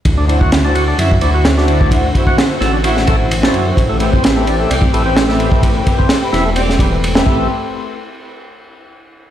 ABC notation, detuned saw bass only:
X:1
M:4/4
L:1/8
Q:"Swing 16ths" 1/4=129
K:Ador
V:1 name="Detuned saw bass" clef=bass
D,,4 F,, D,,3- | D,, z2 A,,,4 F,, | A,,,4 C,, A,,,3- | A,,, z2 E,,,4 A,,, |
z8 |]